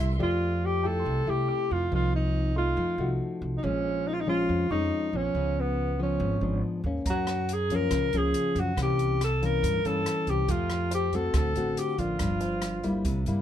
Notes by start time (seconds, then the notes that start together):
Already playing: C3 G3 A#3 E4 A#4 D5 E5 C6
0.00 C2
0.19 F2 F3 A3 G4 D5
0.23 F4
0.65 G4
0.83 A3 E4 G4 A4 G5
1.00 C6
1.05 C2 C3
1.27 C2 A3 E4 G4
1.48 D6
1.71 F2 F4
1.92 C2 C3 F3 A#3 D#4 F4
2.16 D#4
2.56 A3 D#4 F4 C6
2.77 F2 F3
2.98 C2 A3 D#4 F#4
3.42 C2
3.57 D#4
3.63 A#1 A#2 F3 G#3 C#4
4.08 D#4
4.14 F4
4.21 D#4
4.27 F3 G#3 C#4 F4
4.49 F2
4.71 F2 F3 G#3 C#4 D#4 C#6
5.13 A#1 F3 B3 C#4
5.35 C#2 C#3
5.60 B3
5.99 F3 B3 C#4
6.20 G#1 G#2
6.41 G#1 F3 B3 D4
6.84 D#2 A#3 C#4
7.05 F#2 A#5, kick, closed hi-hat
7.10 F#4
7.27 cross-stick, closed hi-hat
7.49 closed hi-hat
7.54 G#4
7.70 F3 A#3 C#4, kick, closed hi-hat
7.75 A#4
7.91 C#2 C#3, kick, cross-stick, closed hi-hat
8.13 C#2 F3 A#3 C#4, closed hi-hat
8.17 G#4
8.34 closed hi-hat
8.55 F#2, kick, closed hi-hat
8.60 F#4
8.77 C2 C3 E3 A#3 C#4, kick, cross-stick, closed hi-hat
8.82 G4
8.99 closed hi-hat
9.21 A4, cross-stick, closed hi-hat
9.42 E3 A#3 C#4 A#4, kick, closed hi-hat
9.63 G2, kick, closed hi-hat
9.85 G2 E3 A#3 C#4 A4 A5, closed hi-hat
10.06 cross-stick, closed hi-hat
10.27 C2 G4, kick, closed hi-hat
10.48 F2 F3 A3 F4 G4, kick, closed hi-hat
10.70 cross-stick, closed hi-hat
10.91 G4 C5, closed hi-hat
11.13 A3 C4 F#4 A4, kick, closed hi-hat
11.34 D2 D3 A4, kick, cross-stick, closed hi-hat
11.56 A1 A3 C4 F#4, closed hi-hat
11.77 G4, closed hi-hat
11.98 A1 F3 A#3 D4 F4, kick, closed hi-hat
12.19 G1 G2, kick, cross-stick, closed hi-hat
12.41 C5, closed hi-hat
12.62 cross-stick, closed hi-hat
12.83 G3 A#3 E4, kick, closed hi-hat
13.05 C2 C3, kick, closed hi-hat
13.26 G2 G3 A#3 E4, closed hi-hat